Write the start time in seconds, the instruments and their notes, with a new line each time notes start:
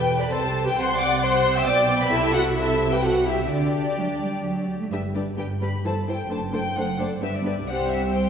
Already playing: double bass section E1, cello section E2, viola section G4, violin section B4 G5
0.20 viola section B4, violin section D5 B5
0.30 double bass section C2, cello section C3, viola section A4, violin section C5 A5
0.65 viola section G4, violin section B4 G5
0.76 double bass section C2, cello section C3, viola section C5, violin section F#5 C6
0.99 viola section D5, violin section F#5 D6
1.22 viola section C5, violin section F#5 C6
1.56 viola section E5, violin section G5 E6
1.67 double bass section B1, cello section B2, viola section D5, violin section G5 D6
2.00 viola section B4, violin section D5 B5
2.11 double bass section C2, cello section C3, viola section E4, violin section A4 E5
2.34 viola section F#4, violin section A4 F#5
2.56 viola section E4, violin section A4 E5
2.91 viola section G4, violin section B4 G5
3.03 viola section F#4, violin section A4 F#5
3.26 viola section E4, violin section G4 E5
3.49 double bass section D2, cello section D3, viola section D4, violin section G4 D5
3.97 cello section F#3
4.21 cello section G3
4.44 double bass section D2, cello section F#3
4.80 cello section A3
4.91 double bass section G1, cello section G2, viola section G3 D4, violin section G4 B4 E5
5.14 viola section G3 D4, violin section G4 B4 D5
5.37 double bass section G1, cello section G2, viola section G3 D4, violin section G4 B4 G5
5.61 viola section G3 D4, violin section G4 B4 B5
5.82 double bass section G1, cello section G2, viola section E3 E4, violin section A4 C5 A5
6.07 viola section E3 E4, violin section A4 C5 G5
6.29 double bass section F#1, cello section F#2, viola section A3 D4, violin section A4 C5 A5
6.52 viola section A3 D4, violin section A4 C5 G5
6.75 double bass section F#1, cello section F#2, viola section A3 D4, violin section A4 C5 F#5
6.97 viola section A3 D4, violin section A4 C5 D5
7.21 double bass section G1, cello section G2, viola section B3 D4, violin section G4 B4 E5
7.34 violin section D5
7.43 viola section B3 D4, violin section G4 B4
7.66 double bass section C2, cello section C2, viola section G3 C4, violin section G4 C5 F#5
7.90 violin section E5
8.10 viola section G3 C4, violin section G4 C5 G5